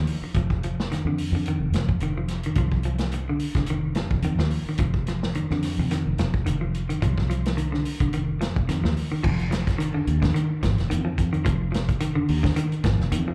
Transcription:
Already playing: F3
0.07 open hi-hat
0.22 muted fingered electric bass stroke, muted clean electric guitar stroke
0.35 F1 F3, kick, closed hi-hat
0.50 kick
0.63 F3, closed hi-hat
0.80 snare
0.92 D#3, snare, closed hi-hat
1.05 F2 D3
1.18 open hi-hat
1.32 F2 D3
1.46 D#3, closed hi-hat
1.60 F1
1.72 F1 F3, snare, closed hi-hat
1.89 kick
2.00 F1 D#3, closed hi-hat
2.18 F3
2.28 snare, closed hi-hat
2.43 D#3, closed hi-hat
2.55 C2 F3, kick, closed hi-hat
2.72 kick
2.83 F3, closed hi-hat
2.98 snare, closed hi-hat
3.12 muted clean electric guitar stroke, closed hi-hat
3.29 D3
3.39 open hi-hat
3.54 F1 D3, kick, snare, closed hi-hat
3.66 closed hi-hat
3.70 D#3
3.95 F3, snare, closed hi-hat
4.11 F1, kick
4.22 F2 D#3, closed hi-hat
4.38 D#2 F3, snare
4.50 open hi-hat
4.66 D#3, muted fingered electric bass stroke
4.78 F1 F3, kick, closed hi-hat
4.94 kick
5.06 F3, snare, closed hi-hat
5.23 snare
5.35 D#3, closed hi-hat
5.51 F2 D3, snare
5.62 snare, open hi-hat
5.78 F2 C3
5.91 D#3, snare, closed hi-hat
6.07 F1
6.18 F1 F3, snare, closed hi-hat
6.34 kick
6.46 F1 D#3, closed hi-hat
6.61 F3
6.74 closed hi-hat
6.89 D#3, closed hi-hat
7.02 C2 F3, kick, closed hi-hat
7.18 kick, snare
7.30 F3, closed hi-hat
7.45 snare, closed hi-hat
7.57 D#3, closed hi-hat
7.72 D3, snare
7.85 open hi-hat
8.00 F1 D3, kick, closed hi-hat
8.13 D#3, closed hi-hat
8.41 F3, snare, closed hi-hat
8.56 F1, kick
8.69 F2 D#3, snare, closed hi-hat
8.84 D#2 F3, snare
8.97 open hi-hat
9.12 D#3, muted fingered electric bass stroke
9.23 F1 F3, kick, crash
9.39 closed hi-hat
9.51 F3, snare, closed hi-hat
9.67 kick, snare, closed hi-hat
9.78 D#3, closed hi-hat
9.94 D3
10.07 D#2, closed hi-hat
10.22 D3, kick, snare, closed hi-hat
10.34 D#3, closed hi-hat
10.63 G#1 F3, kick, snare, closed hi-hat
10.78 F1, snare, closed hi-hat
10.90 F2 D#3, closed hi-hat
11.05 F3
11.18 F2, kick, closed hi-hat
11.33 D#3, closed hi-hat
11.45 F1 F3, kick, closed hi-hat
11.72 F3, snare, closed hi-hat
11.89 kick, closed hi-hat
12.00 D#3, closed hi-hat
12.15 D3
12.28 D#2, open hi-hat
12.43 D3, kick, snare
12.56 D#3, closed hi-hat
12.72 closed hi-hat
12.84 G#1 F3, kick, snare, closed hi-hat
12.99 F1, snare
13.12 F2 D#3, closed hi-hat
13.28 F3

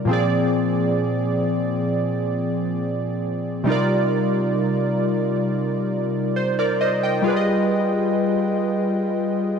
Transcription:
0.05 A#2 F3 C4
0.11 G#4 D5
3.64 C3 G3 D#4
3.69 F4 A#4 D5
6.36 C5
6.59 A#4 D5
6.81 C5 D#5
7.03 D#5 G5
7.22 G3 F4 G#4
7.28 B4 D5
7.36 D#5

